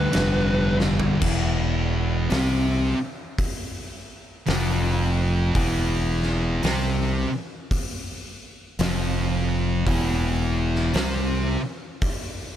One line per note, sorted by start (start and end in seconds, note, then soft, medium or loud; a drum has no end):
0.00 0.10 G2 medium
0.00 0.11 D3 medium
0.00 0.11 G3 loud
0.00 0.76 B4 medium
0.12 1.01 F1 medium
0.12 1.18 G2 medium
0.12 1.19 D3 medium
0.12 1.19 G3 medium
0.12 snare loud
0.12 ride loud
0.80 snare medium
1.00 floor tom loud
1.20 2.26 E1 loud
1.20 2.28 E2 medium
1.20 2.28 E3 loud
1.20 kick loud
1.20 crash loud
2.30 2.92 C2 loud
2.30 2.93 C3 loud
2.30 2.94 C4 loud
2.30 snare loud
2.30 open hi-hat medium
3.38 kick loud
3.38 open hi-hat medium
4.46 5.52 F1 loud
4.46 5.54 F2 medium
4.46 5.54 F3 loud
4.46 snare loud
4.46 open hi-hat medium
5.55 6.59 E1 loud
5.55 6.62 E2 medium
5.55 6.62 E3 loud
5.55 kick loud
5.55 open hi-hat medium
6.22 snare soft
6.63 7.25 C2 loud
6.63 7.26 C3 medium
6.63 7.27 C4 loud
6.63 snare loud
6.63 open hi-hat medium
7.71 kick loud
7.71 open hi-hat medium
8.79 9.83 F1 loud
8.79 9.86 F2 loud
8.79 9.86 F3 loud
8.79 snare loud
8.79 open hi-hat medium
9.87 10.91 E1 loud
9.87 10.93 E2 loud
9.87 10.94 E3 loud
9.87 kick loud
9.87 open hi-hat medium
10.75 snare soft
10.93 11.56 C2 loud
10.93 11.57 C3 medium
10.93 11.58 C4 loud
10.93 snare loud
10.93 open hi-hat medium
12.02 kick loud
12.02 open hi-hat medium